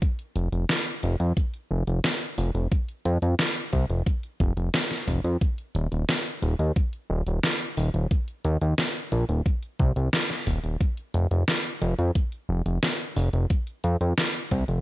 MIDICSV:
0, 0, Header, 1, 3, 480
1, 0, Start_track
1, 0, Tempo, 674157
1, 14, Time_signature, 4, 2, 24, 8
1, 10545, End_track
2, 0, Start_track
2, 0, Title_t, "Analog synth bass"
2, 0, Program_c, 0, 38
2, 254, Note_on_c, 0, 29, 92
2, 345, Note_off_c, 0, 29, 0
2, 374, Note_on_c, 0, 29, 83
2, 465, Note_off_c, 0, 29, 0
2, 735, Note_on_c, 0, 29, 97
2, 825, Note_off_c, 0, 29, 0
2, 855, Note_on_c, 0, 41, 82
2, 945, Note_off_c, 0, 41, 0
2, 1215, Note_on_c, 0, 29, 94
2, 1305, Note_off_c, 0, 29, 0
2, 1335, Note_on_c, 0, 29, 81
2, 1425, Note_off_c, 0, 29, 0
2, 1694, Note_on_c, 0, 29, 98
2, 1785, Note_off_c, 0, 29, 0
2, 1814, Note_on_c, 0, 29, 84
2, 1905, Note_off_c, 0, 29, 0
2, 2174, Note_on_c, 0, 41, 97
2, 2265, Note_off_c, 0, 41, 0
2, 2294, Note_on_c, 0, 41, 83
2, 2385, Note_off_c, 0, 41, 0
2, 2654, Note_on_c, 0, 36, 94
2, 2745, Note_off_c, 0, 36, 0
2, 2775, Note_on_c, 0, 29, 81
2, 2865, Note_off_c, 0, 29, 0
2, 3134, Note_on_c, 0, 29, 94
2, 3225, Note_off_c, 0, 29, 0
2, 3254, Note_on_c, 0, 29, 80
2, 3345, Note_off_c, 0, 29, 0
2, 3614, Note_on_c, 0, 29, 91
2, 3705, Note_off_c, 0, 29, 0
2, 3733, Note_on_c, 0, 41, 83
2, 3824, Note_off_c, 0, 41, 0
2, 4093, Note_on_c, 0, 27, 96
2, 4184, Note_off_c, 0, 27, 0
2, 4214, Note_on_c, 0, 27, 81
2, 4305, Note_off_c, 0, 27, 0
2, 4573, Note_on_c, 0, 27, 95
2, 4664, Note_off_c, 0, 27, 0
2, 4694, Note_on_c, 0, 39, 82
2, 4785, Note_off_c, 0, 39, 0
2, 5053, Note_on_c, 0, 27, 94
2, 5144, Note_off_c, 0, 27, 0
2, 5174, Note_on_c, 0, 27, 78
2, 5265, Note_off_c, 0, 27, 0
2, 5535, Note_on_c, 0, 27, 95
2, 5625, Note_off_c, 0, 27, 0
2, 5654, Note_on_c, 0, 27, 84
2, 5745, Note_off_c, 0, 27, 0
2, 6014, Note_on_c, 0, 39, 98
2, 6105, Note_off_c, 0, 39, 0
2, 6134, Note_on_c, 0, 39, 84
2, 6225, Note_off_c, 0, 39, 0
2, 6494, Note_on_c, 0, 34, 97
2, 6585, Note_off_c, 0, 34, 0
2, 6614, Note_on_c, 0, 27, 82
2, 6705, Note_off_c, 0, 27, 0
2, 6974, Note_on_c, 0, 36, 96
2, 7065, Note_off_c, 0, 36, 0
2, 7093, Note_on_c, 0, 36, 82
2, 7184, Note_off_c, 0, 36, 0
2, 7454, Note_on_c, 0, 27, 95
2, 7544, Note_off_c, 0, 27, 0
2, 7574, Note_on_c, 0, 27, 83
2, 7665, Note_off_c, 0, 27, 0
2, 7934, Note_on_c, 0, 29, 96
2, 8025, Note_off_c, 0, 29, 0
2, 8053, Note_on_c, 0, 29, 84
2, 8144, Note_off_c, 0, 29, 0
2, 8413, Note_on_c, 0, 29, 96
2, 8504, Note_off_c, 0, 29, 0
2, 8534, Note_on_c, 0, 41, 83
2, 8625, Note_off_c, 0, 41, 0
2, 8893, Note_on_c, 0, 29, 98
2, 8984, Note_off_c, 0, 29, 0
2, 9013, Note_on_c, 0, 29, 78
2, 9104, Note_off_c, 0, 29, 0
2, 9373, Note_on_c, 0, 29, 94
2, 9464, Note_off_c, 0, 29, 0
2, 9494, Note_on_c, 0, 29, 82
2, 9585, Note_off_c, 0, 29, 0
2, 9854, Note_on_c, 0, 41, 95
2, 9945, Note_off_c, 0, 41, 0
2, 9974, Note_on_c, 0, 41, 82
2, 10065, Note_off_c, 0, 41, 0
2, 10334, Note_on_c, 0, 36, 96
2, 10425, Note_off_c, 0, 36, 0
2, 10454, Note_on_c, 0, 29, 83
2, 10545, Note_off_c, 0, 29, 0
2, 10545, End_track
3, 0, Start_track
3, 0, Title_t, "Drums"
3, 14, Note_on_c, 9, 36, 127
3, 14, Note_on_c, 9, 42, 92
3, 85, Note_off_c, 9, 36, 0
3, 85, Note_off_c, 9, 42, 0
3, 134, Note_on_c, 9, 42, 42
3, 205, Note_off_c, 9, 42, 0
3, 254, Note_on_c, 9, 42, 69
3, 325, Note_off_c, 9, 42, 0
3, 373, Note_on_c, 9, 42, 42
3, 445, Note_off_c, 9, 42, 0
3, 493, Note_on_c, 9, 38, 127
3, 493, Note_on_c, 9, 42, 100
3, 565, Note_off_c, 9, 38, 0
3, 565, Note_off_c, 9, 42, 0
3, 614, Note_on_c, 9, 42, 42
3, 686, Note_off_c, 9, 42, 0
3, 734, Note_on_c, 9, 42, 63
3, 805, Note_off_c, 9, 42, 0
3, 853, Note_on_c, 9, 42, 40
3, 925, Note_off_c, 9, 42, 0
3, 974, Note_on_c, 9, 36, 127
3, 974, Note_on_c, 9, 42, 99
3, 1045, Note_off_c, 9, 36, 0
3, 1045, Note_off_c, 9, 42, 0
3, 1094, Note_on_c, 9, 42, 40
3, 1165, Note_off_c, 9, 42, 0
3, 1334, Note_on_c, 9, 42, 43
3, 1405, Note_off_c, 9, 42, 0
3, 1453, Note_on_c, 9, 38, 125
3, 1453, Note_on_c, 9, 42, 98
3, 1525, Note_off_c, 9, 38, 0
3, 1525, Note_off_c, 9, 42, 0
3, 1573, Note_on_c, 9, 42, 41
3, 1645, Note_off_c, 9, 42, 0
3, 1693, Note_on_c, 9, 46, 78
3, 1765, Note_off_c, 9, 46, 0
3, 1814, Note_on_c, 9, 42, 39
3, 1885, Note_off_c, 9, 42, 0
3, 1934, Note_on_c, 9, 36, 127
3, 1934, Note_on_c, 9, 42, 93
3, 2005, Note_off_c, 9, 36, 0
3, 2005, Note_off_c, 9, 42, 0
3, 2054, Note_on_c, 9, 42, 41
3, 2125, Note_off_c, 9, 42, 0
3, 2174, Note_on_c, 9, 42, 68
3, 2246, Note_off_c, 9, 42, 0
3, 2294, Note_on_c, 9, 42, 40
3, 2365, Note_off_c, 9, 42, 0
3, 2413, Note_on_c, 9, 38, 125
3, 2413, Note_on_c, 9, 42, 93
3, 2485, Note_off_c, 9, 38, 0
3, 2485, Note_off_c, 9, 42, 0
3, 2534, Note_on_c, 9, 42, 40
3, 2605, Note_off_c, 9, 42, 0
3, 2653, Note_on_c, 9, 42, 62
3, 2654, Note_on_c, 9, 36, 64
3, 2725, Note_off_c, 9, 36, 0
3, 2725, Note_off_c, 9, 42, 0
3, 2774, Note_on_c, 9, 42, 39
3, 2845, Note_off_c, 9, 42, 0
3, 2894, Note_on_c, 9, 36, 124
3, 2894, Note_on_c, 9, 42, 97
3, 2965, Note_off_c, 9, 36, 0
3, 2965, Note_off_c, 9, 42, 0
3, 3014, Note_on_c, 9, 42, 39
3, 3085, Note_off_c, 9, 42, 0
3, 3134, Note_on_c, 9, 36, 109
3, 3135, Note_on_c, 9, 42, 36
3, 3205, Note_off_c, 9, 36, 0
3, 3206, Note_off_c, 9, 42, 0
3, 3254, Note_on_c, 9, 42, 40
3, 3325, Note_off_c, 9, 42, 0
3, 3374, Note_on_c, 9, 38, 127
3, 3374, Note_on_c, 9, 42, 97
3, 3446, Note_off_c, 9, 38, 0
3, 3446, Note_off_c, 9, 42, 0
3, 3494, Note_on_c, 9, 38, 38
3, 3494, Note_on_c, 9, 42, 39
3, 3565, Note_off_c, 9, 38, 0
3, 3565, Note_off_c, 9, 42, 0
3, 3614, Note_on_c, 9, 36, 67
3, 3614, Note_on_c, 9, 46, 76
3, 3685, Note_off_c, 9, 36, 0
3, 3685, Note_off_c, 9, 46, 0
3, 3734, Note_on_c, 9, 42, 39
3, 3805, Note_off_c, 9, 42, 0
3, 3853, Note_on_c, 9, 42, 90
3, 3854, Note_on_c, 9, 36, 120
3, 3925, Note_off_c, 9, 36, 0
3, 3925, Note_off_c, 9, 42, 0
3, 3974, Note_on_c, 9, 42, 40
3, 4045, Note_off_c, 9, 42, 0
3, 4094, Note_on_c, 9, 42, 66
3, 4165, Note_off_c, 9, 42, 0
3, 4214, Note_on_c, 9, 42, 39
3, 4285, Note_off_c, 9, 42, 0
3, 4334, Note_on_c, 9, 38, 123
3, 4334, Note_on_c, 9, 42, 91
3, 4405, Note_off_c, 9, 38, 0
3, 4405, Note_off_c, 9, 42, 0
3, 4454, Note_on_c, 9, 42, 39
3, 4525, Note_off_c, 9, 42, 0
3, 4574, Note_on_c, 9, 42, 59
3, 4645, Note_off_c, 9, 42, 0
3, 4694, Note_on_c, 9, 42, 37
3, 4765, Note_off_c, 9, 42, 0
3, 4814, Note_on_c, 9, 42, 89
3, 4815, Note_on_c, 9, 36, 123
3, 4885, Note_off_c, 9, 42, 0
3, 4886, Note_off_c, 9, 36, 0
3, 4934, Note_on_c, 9, 42, 38
3, 5005, Note_off_c, 9, 42, 0
3, 5173, Note_on_c, 9, 42, 39
3, 5244, Note_off_c, 9, 42, 0
3, 5293, Note_on_c, 9, 38, 127
3, 5293, Note_on_c, 9, 42, 93
3, 5364, Note_off_c, 9, 38, 0
3, 5364, Note_off_c, 9, 42, 0
3, 5414, Note_on_c, 9, 42, 38
3, 5485, Note_off_c, 9, 42, 0
3, 5533, Note_on_c, 9, 46, 77
3, 5605, Note_off_c, 9, 46, 0
3, 5653, Note_on_c, 9, 42, 39
3, 5724, Note_off_c, 9, 42, 0
3, 5774, Note_on_c, 9, 36, 124
3, 5774, Note_on_c, 9, 42, 91
3, 5845, Note_off_c, 9, 36, 0
3, 5845, Note_off_c, 9, 42, 0
3, 5894, Note_on_c, 9, 42, 38
3, 5965, Note_off_c, 9, 42, 0
3, 6013, Note_on_c, 9, 42, 66
3, 6084, Note_off_c, 9, 42, 0
3, 6133, Note_on_c, 9, 42, 39
3, 6204, Note_off_c, 9, 42, 0
3, 6252, Note_on_c, 9, 38, 114
3, 6252, Note_on_c, 9, 42, 90
3, 6323, Note_off_c, 9, 38, 0
3, 6323, Note_off_c, 9, 42, 0
3, 6373, Note_on_c, 9, 42, 39
3, 6444, Note_off_c, 9, 42, 0
3, 6493, Note_on_c, 9, 42, 59
3, 6564, Note_off_c, 9, 42, 0
3, 6613, Note_on_c, 9, 42, 38
3, 6684, Note_off_c, 9, 42, 0
3, 6733, Note_on_c, 9, 42, 91
3, 6734, Note_on_c, 9, 36, 114
3, 6804, Note_off_c, 9, 42, 0
3, 6805, Note_off_c, 9, 36, 0
3, 6853, Note_on_c, 9, 42, 38
3, 6925, Note_off_c, 9, 42, 0
3, 6974, Note_on_c, 9, 36, 107
3, 7045, Note_off_c, 9, 36, 0
3, 7093, Note_on_c, 9, 42, 39
3, 7164, Note_off_c, 9, 42, 0
3, 7213, Note_on_c, 9, 38, 121
3, 7213, Note_on_c, 9, 42, 90
3, 7285, Note_off_c, 9, 38, 0
3, 7285, Note_off_c, 9, 42, 0
3, 7334, Note_on_c, 9, 38, 35
3, 7334, Note_on_c, 9, 42, 38
3, 7405, Note_off_c, 9, 38, 0
3, 7405, Note_off_c, 9, 42, 0
3, 7454, Note_on_c, 9, 36, 63
3, 7454, Note_on_c, 9, 46, 77
3, 7525, Note_off_c, 9, 36, 0
3, 7525, Note_off_c, 9, 46, 0
3, 7573, Note_on_c, 9, 42, 38
3, 7644, Note_off_c, 9, 42, 0
3, 7693, Note_on_c, 9, 42, 93
3, 7694, Note_on_c, 9, 36, 118
3, 7764, Note_off_c, 9, 42, 0
3, 7765, Note_off_c, 9, 36, 0
3, 7813, Note_on_c, 9, 42, 41
3, 7884, Note_off_c, 9, 42, 0
3, 7933, Note_on_c, 9, 42, 66
3, 8005, Note_off_c, 9, 42, 0
3, 8054, Note_on_c, 9, 42, 40
3, 8125, Note_off_c, 9, 42, 0
3, 8173, Note_on_c, 9, 38, 118
3, 8173, Note_on_c, 9, 42, 94
3, 8244, Note_off_c, 9, 38, 0
3, 8244, Note_off_c, 9, 42, 0
3, 8294, Note_on_c, 9, 42, 40
3, 8365, Note_off_c, 9, 42, 0
3, 8414, Note_on_c, 9, 42, 64
3, 8485, Note_off_c, 9, 42, 0
3, 8534, Note_on_c, 9, 42, 37
3, 8605, Note_off_c, 9, 42, 0
3, 8653, Note_on_c, 9, 42, 90
3, 8654, Note_on_c, 9, 36, 116
3, 8724, Note_off_c, 9, 42, 0
3, 8725, Note_off_c, 9, 36, 0
3, 8773, Note_on_c, 9, 42, 39
3, 8844, Note_off_c, 9, 42, 0
3, 9013, Note_on_c, 9, 42, 39
3, 9084, Note_off_c, 9, 42, 0
3, 9133, Note_on_c, 9, 38, 123
3, 9133, Note_on_c, 9, 42, 93
3, 9204, Note_off_c, 9, 38, 0
3, 9204, Note_off_c, 9, 42, 0
3, 9253, Note_on_c, 9, 42, 40
3, 9324, Note_off_c, 9, 42, 0
3, 9372, Note_on_c, 9, 46, 82
3, 9444, Note_off_c, 9, 46, 0
3, 9493, Note_on_c, 9, 42, 38
3, 9564, Note_off_c, 9, 42, 0
3, 9613, Note_on_c, 9, 42, 95
3, 9614, Note_on_c, 9, 36, 120
3, 9684, Note_off_c, 9, 42, 0
3, 9685, Note_off_c, 9, 36, 0
3, 9733, Note_on_c, 9, 42, 41
3, 9804, Note_off_c, 9, 42, 0
3, 9853, Note_on_c, 9, 42, 70
3, 9924, Note_off_c, 9, 42, 0
3, 9974, Note_on_c, 9, 42, 42
3, 10045, Note_off_c, 9, 42, 0
3, 10094, Note_on_c, 9, 38, 118
3, 10094, Note_on_c, 9, 42, 97
3, 10165, Note_off_c, 9, 38, 0
3, 10165, Note_off_c, 9, 42, 0
3, 10214, Note_on_c, 9, 42, 40
3, 10285, Note_off_c, 9, 42, 0
3, 10334, Note_on_c, 9, 36, 59
3, 10334, Note_on_c, 9, 42, 62
3, 10405, Note_off_c, 9, 36, 0
3, 10405, Note_off_c, 9, 42, 0
3, 10454, Note_on_c, 9, 42, 40
3, 10525, Note_off_c, 9, 42, 0
3, 10545, End_track
0, 0, End_of_file